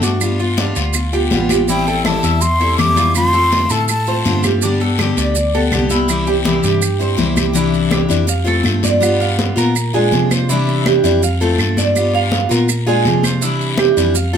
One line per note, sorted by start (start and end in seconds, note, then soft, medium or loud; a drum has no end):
0.00 0.71 G2 medium
0.00 0.21 C4 soft
0.00 0.39 D4 medium
0.00 0.21 F#4 soft
0.00 high conga medium
0.00 short guiro medium
0.00 maracas medium
0.05 0.20 A3 soft
0.20 0.39 G3 medium
0.20 0.39 B3 medium
0.20 0.39 F4 medium
0.20 high conga soft
0.20 long guiro medium
0.20 claves medium
0.20 maracas medium
0.39 0.57 B3 soft
0.39 0.58 F4 medium
0.39 0.58 F4 soft
0.39 high conga soft
0.39 maracas soft
0.57 0.93 G3 medium
0.57 0.94 B3 medium
0.57 0.76 D4 medium
0.57 0.94 F4 medium
0.57 high conga medium
0.57 short guiro medium
0.57 maracas soft
0.76 1.28 D2 medium
0.76 1.12 F4 medium
0.76 high conga soft
0.76 short guiro medium
0.76 maracas medium
0.93 muted steel-string acoustic guitar stroke soft
0.93 high conga soft
0.93 long guiro medium
0.93 claves medium
0.93 maracas medium
1.13 1.31 B3 soft
1.13 1.31 F4 soft
1.13 1.49 G4 medium
1.13 high conga soft
1.13 maracas soft
1.31 2.18 A1 medium
1.31 1.49 G3 medium
1.31 1.50 B3 medium
1.31 1.49 F4 medium
1.31 high conga medium
1.31 short guiro medium
1.31 maracas soft
1.49 1.68 B3 soft
1.49 1.68 F4 soft
1.49 1.68 G4 medium
1.49 high conga medium
1.49 short guiro medium
1.49 claves medium
1.49 maracas medium
1.68 1.86 E3 medium
1.68 1.86 G3 medium
1.68 1.86 C4 medium
1.68 1.87 E4 medium
1.68 1.86 E4 medium
1.68 2.03 G5 medium
1.68 high conga soft
1.68 long guiro medium
1.68 maracas medium
1.87 2.04 G3 soft
1.87 2.05 C4 soft
1.87 2.05 E4 soft
1.87 2.23 A4 medium
1.87 high conga soft
1.87 maracas soft
2.05 2.41 E3 medium
2.05 2.41 G3 medium
2.05 2.42 C4 medium
2.05 2.42 E4 medium
2.05 2.43 A5 medium
2.05 high conga medium
2.05 short guiro medium
2.05 claves medium
2.05 maracas soft
2.23 2.75 E2 medium
2.23 2.59 E5 medium
2.23 high conga soft
2.23 short guiro medium
2.23 maracas medium
2.41 2.78 C6 loud
2.41 muted steel-string acoustic guitar stroke medium
2.41 high conga soft
2.41 long guiro medium
2.41 maracas medium
2.60 2.79 G3 soft
2.60 2.79 C4 soft
2.60 2.78 E4 soft
2.60 2.96 A4 medium
2.60 high conga soft
2.60 maracas soft
2.78 3.65 F2 medium
2.78 2.97 E3 medium
2.78 2.97 G3 medium
2.78 2.97 C4 medium
2.78 2.96 E4 medium
2.78 3.13 D6 loud
2.78 high conga medium
2.78 short guiro medium
2.78 claves medium
2.78 maracas soft
2.96 3.15 G3 soft
2.96 3.15 C4 soft
2.96 3.15 E4 medium
2.96 3.33 F4 medium
2.96 high conga medium
2.96 short guiro medium
2.96 maracas medium
3.15 3.33 D3 medium
3.15 3.33 A3 medium
3.15 3.33 C4 medium
3.15 3.32 F4 medium
3.15 3.72 C6 loud
3.15 high conga soft
3.15 long guiro medium
3.15 claves medium
3.15 maracas medium
3.33 3.51 A3 soft
3.33 3.52 C4 soft
3.33 3.51 F4 soft
3.33 3.52 A4 medium
3.33 high conga soft
3.33 maracas soft
3.51 3.88 D3 medium
3.51 3.88 A3 medium
3.51 3.89 C4 medium
3.51 3.70 F4 medium
3.51 3.89 F4 medium
3.51 high conga medium
3.51 short guiro medium
3.51 maracas soft
3.70 4.22 A2 medium
3.70 4.07 A4 medium
3.70 3.89 A5 medium
3.70 high conga soft
3.70 short guiro medium
3.70 maracas medium
3.88 4.40 A5 medium
3.88 muted steel-string acoustic guitar stroke medium
3.88 high conga soft
3.88 long guiro medium
3.88 claves medium
3.88 maracas medium
4.06 4.25 A3 soft
4.06 4.25 C4 soft
4.06 4.25 F4 soft
4.06 4.43 C5 medium
4.06 high conga soft
4.06 maracas soft
4.25 5.11 G2 medium
4.25 4.43 D3 medium
4.25 4.43 A3 medium
4.25 4.44 C4 medium
4.25 4.43 F4 medium
4.25 high conga medium
4.25 short guiro medium
4.25 maracas soft
4.43 4.63 A3 soft
4.43 4.62 C4 soft
4.43 4.62 F4 soft
4.43 4.62 G4 medium
4.43 high conga medium
4.43 short guiro medium
4.43 claves medium
4.43 maracas medium
4.62 4.80 D3 medium
4.62 4.81 G3 medium
4.62 4.81 B3 medium
4.62 4.80 D4 medium
4.62 4.80 G4 medium
4.62 high conga soft
4.62 long guiro medium
4.62 maracas medium
4.80 5.00 G3 soft
4.80 4.99 B3 soft
4.80 4.99 G4 soft
4.80 5.16 A4 medium
4.80 high conga soft
4.80 maracas soft
4.98 5.35 D3 medium
4.98 5.35 G3 medium
4.98 5.36 B3 medium
4.98 high conga medium
4.98 short guiro medium
4.98 claves medium
4.98 maracas soft
5.02 5.36 G4 medium
5.17 5.69 D2 medium
5.17 5.53 D5 medium
5.17 high conga soft
5.17 short guiro medium
5.17 maracas medium
5.35 muted steel-string acoustic guitar stroke soft
5.35 high conga soft
5.35 long guiro medium
5.35 maracas medium
5.54 5.72 G3 soft
5.54 5.72 B3 soft
5.54 5.72 G4 soft
5.54 5.90 A4 medium
5.54 high conga soft
5.54 maracas soft
5.72 6.58 C2 medium
5.72 5.90 D3 medium
5.72 5.90 G3 medium
5.72 5.91 B3 medium
5.72 5.89 G4 medium
5.72 high conga medium
5.72 short guiro medium
5.72 claves medium
5.72 maracas soft
5.90 6.08 G3 soft
5.90 6.09 B3 soft
5.90 6.26 E4 medium
5.90 6.08 G4 soft
5.90 high conga medium
5.90 short guiro medium
5.90 maracas medium
6.08 6.26 C3 medium
6.08 6.26 E3 medium
6.08 6.27 G3 medium
6.08 6.26 C4 medium
6.08 6.25 E4 medium
6.08 high conga soft
6.08 long guiro medium
6.08 claves medium
6.08 maracas medium
6.26 6.44 G3 soft
6.26 6.44 C4 soft
6.26 6.44 E4 soft
6.26 6.45 G4 medium
6.26 high conga soft
6.26 maracas soft
6.44 6.80 C3 medium
6.44 6.81 E3 medium
6.44 6.81 G3 medium
6.44 6.81 C4 medium
6.44 6.64 E4 medium
6.44 6.81 E4 medium
6.44 high conga medium
6.44 short guiro medium
6.44 maracas soft
6.63 7.15 G2 medium
6.63 7.00 G4 medium
6.63 high conga soft
6.63 short guiro medium
6.63 maracas medium
6.82 muted steel-string acoustic guitar stroke medium
6.82 high conga soft
6.82 long guiro medium
6.82 claves medium
6.82 maracas medium
6.99 7.17 G3 soft
6.99 7.17 C4 soft
6.99 7.18 E4 soft
6.99 7.36 C5 medium
6.99 high conga soft
6.99 maracas soft
7.17 8.05 C2 medium
7.17 7.35 C3 medium
7.17 7.36 E3 medium
7.17 7.36 G3 medium
7.17 7.35 C4 medium
7.17 7.34 E4 medium
7.17 high conga medium
7.17 short guiro medium
7.17 maracas soft
7.35 7.53 G3 soft
7.35 7.54 C4 soft
7.35 7.54 E4 soft
7.35 7.55 G4 medium
7.35 high conga medium
7.35 short guiro medium
7.35 claves medium
7.35 maracas medium
7.53 8.09 C3 medium
7.53 8.09 E3 medium
7.53 8.09 G3 medium
7.53 8.09 D4 medium
7.53 8.07 E4 medium
7.53 7.91 E4 medium
7.53 high conga soft
7.53 long guiro medium
7.53 maracas medium
7.73 high conga soft
7.73 maracas soft
7.91 8.28 G4 medium
7.91 high conga medium
7.91 short guiro medium
7.91 claves medium
7.91 maracas soft
8.09 8.62 F2 medium
8.09 8.26 E3 medium
8.09 8.27 G3 medium
8.09 8.27 D4 medium
8.09 8.27 E4 medium
8.09 high conga soft
8.09 short guiro medium
8.09 maracas medium
8.27 8.47 F5 medium
8.27 muted steel-string acoustic guitar stroke medium
8.27 high conga soft
8.27 long guiro medium
8.27 maracas medium
8.44 8.65 E3 medium
8.44 8.63 A3 medium
8.44 8.64 C4 medium
8.44 8.64 F4 medium
8.44 8.83 A4 medium
8.44 high conga soft
8.44 maracas soft
8.64 9.51 G2 medium
8.64 9.00 A3 medium
8.64 9.01 C4 medium
8.64 9.02 F4 medium
8.64 high conga medium
8.64 short guiro medium
8.64 claves medium
8.64 maracas soft
8.83 9.19 D5 medium
8.83 high conga medium
8.83 short guiro medium
8.83 maracas medium
9.00 9.56 G3 medium
9.00 9.56 B3 medium
9.00 9.55 F4 medium
9.00 high conga soft
9.00 long guiro medium
9.00 claves medium
9.00 maracas medium
9.20 9.56 F5 medium
9.20 high conga soft
9.20 maracas soft
9.39 high conga medium
9.39 short guiro medium
9.39 maracas soft
9.56 9.91 A#2 medium
9.56 9.75 B3 medium
9.56 9.74 F4 medium
9.56 9.93 A#4 medium
9.56 high conga soft
9.56 short guiro medium
9.56 maracas medium
9.75 muted steel-string acoustic guitar stroke medium
9.75 high conga soft
9.75 long guiro medium
9.75 claves medium
9.75 maracas medium
9.94 10.11 A#2 medium
9.94 10.12 G#3 medium
9.94 10.12 D4 medium
9.94 10.11 F4 medium
9.94 10.30 G#4 medium
9.94 high conga soft
9.94 maracas soft
10.12 10.98 C3 medium
10.12 10.48 F3 soft
10.12 10.49 G#3 soft
10.12 10.49 D4 soft
10.12 10.49 F4 medium
10.12 high conga medium
10.12 short guiro medium
10.12 maracas soft
10.31 10.49 C5 medium
10.31 high conga medium
10.31 short guiro medium
10.31 claves medium
10.31 maracas medium
10.49 11.04 C3 medium
10.49 11.04 E3 medium
10.49 11.04 G3 medium
10.49 11.03 D4 medium
10.49 10.85 E4 medium
10.49 11.02 E4 medium
10.49 high conga soft
10.49 long guiro medium
10.49 maracas medium
10.68 high conga soft
10.68 maracas soft
10.86 11.22 G4 medium
10.86 high conga medium
10.86 short guiro medium
10.86 claves medium
10.86 maracas soft
11.04 11.55 F2 medium
11.04 11.21 E3 medium
11.04 11.22 G3 medium
11.04 11.22 D4 medium
11.04 11.21 E4 medium
11.04 high conga soft
11.04 short guiro medium
11.04 maracas medium
11.22 11.41 F5 medium
11.22 muted steel-string acoustic guitar stroke medium
11.22 high conga soft
11.22 long guiro medium
11.22 maracas medium
11.41 11.59 E3 medium
11.41 11.59 A3 medium
11.41 11.59 C4 medium
11.41 11.58 F4 medium
11.41 11.76 A4 medium
11.41 high conga soft
11.41 maracas soft
11.58 12.45 G2 medium
11.58 11.95 A3 medium
11.58 11.96 C4 soft
11.58 11.96 F4 medium
11.58 high conga medium
11.58 short guiro medium
11.58 claves medium
11.58 maracas soft
11.77 12.13 D5 medium
11.77 high conga medium
11.77 short guiro medium
11.77 maracas medium
11.95 12.50 G3 medium
11.95 12.50 B3 medium
11.95 12.48 F4 medium
11.95 high conga soft
11.95 long guiro medium
11.95 claves medium
11.95 maracas medium
12.14 12.50 F5 medium
12.14 high conga soft
12.14 maracas soft
12.32 high conga medium
12.32 short guiro medium
12.32 maracas soft
12.49 12.85 A#2 medium
12.49 12.68 B3 medium
12.49 12.67 F4 medium
12.49 12.86 A#4 medium
12.49 high conga soft
12.49 short guiro medium
12.49 maracas medium
12.68 muted steel-string acoustic guitar stroke medium
12.68 high conga soft
12.68 long guiro medium
12.68 claves medium
12.68 maracas medium
12.87 13.05 A#2 medium
12.87 13.06 G#3 medium
12.87 13.05 D4 medium
12.87 13.05 F4 medium
12.87 13.23 G#4 medium
12.87 high conga soft
12.87 maracas soft
13.05 13.91 C3 medium
13.05 13.42 F3 soft
13.05 13.42 G#3 soft
13.05 13.42 D4 soft
13.05 13.43 F4 medium
13.05 high conga medium
13.05 short guiro medium
13.05 maracas soft
13.23 13.42 C5 medium
13.23 high conga medium
13.23 short guiro medium
13.23 claves medium
13.23 maracas medium
13.41 13.96 C3 medium
13.41 13.96 E3 medium
13.41 13.97 G3 medium
13.41 13.97 D4 medium
13.41 13.78 E4 medium
13.41 13.96 E4 medium
13.41 high conga soft
13.41 long guiro medium
13.41 maracas medium
13.60 high conga soft
13.60 maracas soft
13.78 14.14 G4 medium
13.78 high conga medium
13.78 short guiro medium
13.78 claves medium
13.78 maracas soft
13.97 14.37 F2 medium
13.97 14.15 E3 medium
13.97 14.16 G3 medium
13.97 14.15 D4 medium
13.97 14.15 E4 medium
13.97 high conga soft
13.97 short guiro medium
13.97 maracas medium
14.15 14.33 F5 medium
14.15 muted steel-string acoustic guitar stroke medium
14.15 high conga soft
14.15 long guiro medium
14.15 maracas medium
14.33 14.37 C4 medium
14.33 14.37 F4 medium
14.33 14.37 A4 medium
14.33 high conga soft